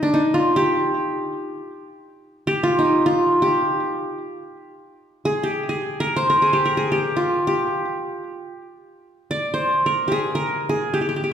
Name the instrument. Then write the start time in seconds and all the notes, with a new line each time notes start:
qanun
0.03 D4
0.14 D#4
0.34 F4
0.56 G4
2.47 G4
2.63 F4
2.79 D#4
3.06 F4
3.42 G4
5.25 G#4
5.43 G4
5.69 G#4
6.00 A#4
6.16 C5
6.30 A#4
6.42 G#4
6.53 G4
6.65 A#4
6.77 G#4
6.92 G4
7.17 F4
7.47 G4
9.31 D5
9.54 C5
9.86 A#4
10.08 G4 G#4
10.35 A#4
10.69 G#4
10.94 G4
11.01 G4
11.09 G4
11.16 G4
11.24 G4